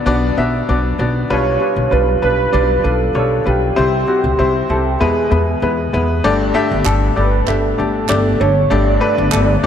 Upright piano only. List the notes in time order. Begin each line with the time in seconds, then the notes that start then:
Already playing: B2 F#3 B3 D4 F#4 D5 E5
0.06 B3 D4 F#4 D5
0.37 B3 D4 F#4 E5
0.69 B3 D4 F#4 D5
0.99 B3 D4 F#4 D5
1.30 B2 G3 D4 F4 B4
1.60 G3 D4 F4 B4
1.91 G3 D4 F4 B4
2.22 G3 D4 F4 B4
2.52 G3 D4 F4 D5
2.84 G3 D4 F4 B4
3.15 G3 D4 F4 C#5
3.45 G3 D4 F4 B4
3.76 C3 G3 C4 E4 C5
4.07 G3 C4 E4 F#4
4.38 G3 C4 E4 C5
4.70 G3 C4 E4 A4
5.00 B2 G#3 B3 E4 B4
5.31 G#3 B3 E4 B4
5.63 G#3 B3 E4 B4
5.93 G#3 B3 E4 B4
6.24 G2 D3 A3 D4 G4 D5
6.54 A3 D4 G4 E5
6.85 A3 D4 G4 A4
7.16 A3 D4 G4 D5
7.47 A3 D4 G4 E5
7.78 A3 D4 G4 D5
8.09 A3 D4 G4 D5
8.40 A3 D4 G4 A4
8.70 G2 D3 A3 D4 G4 D5
9.00 A3 D4 G4 B4
9.31 A3 D4 G4 A4
9.63 A3 D4 G4